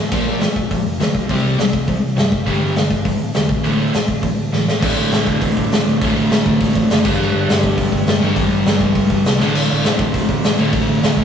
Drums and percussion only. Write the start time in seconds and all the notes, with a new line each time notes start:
0.12 kick, open hi-hat, crash
0.41 snare, open hi-hat
0.56 kick
0.71 kick, open hi-hat
1.00 snare, open hi-hat
1.15 kick
1.29 kick, open hi-hat
1.59 snare, open hi-hat
1.73 kick
1.88 kick, open hi-hat
2.17 snare, open hi-hat
2.32 kick
2.47 kick, open hi-hat
2.76 snare, open hi-hat
2.91 kick
3.05 kick, open hi-hat
3.34 snare, open hi-hat
3.49 kick
3.64 open hi-hat
3.94 snare, open hi-hat
4.08 kick
4.23 kick, open hi-hat
4.53 snare
4.68 snare
4.83 kick, crash
5.12 snare, open hi-hat
5.27 kick
5.41 kick, open hi-hat
5.57 kick
5.72 snare, open hi-hat
6.01 kick, open hi-hat
6.31 snare, open hi-hat
6.46 kick
6.61 kick, open hi-hat
6.75 kick
6.90 snare, open hi-hat
7.05 kick, crash
7.49 snare, open hi-hat
7.63 kick
7.78 kick, open hi-hat
7.92 kick
8.07 snare, open hi-hat
8.36 kick, open hi-hat
8.66 snare, open hi-hat
8.80 kick
8.95 kick, open hi-hat
9.10 kick
9.25 snare, open hi-hat
9.41 snare
9.55 crash, splash
9.84 snare, open hi-hat
9.99 kick
10.14 kick, open hi-hat
10.29 kick
10.44 snare, open hi-hat
10.73 kick, open hi-hat
11.03 snare, open hi-hat
11.17 kick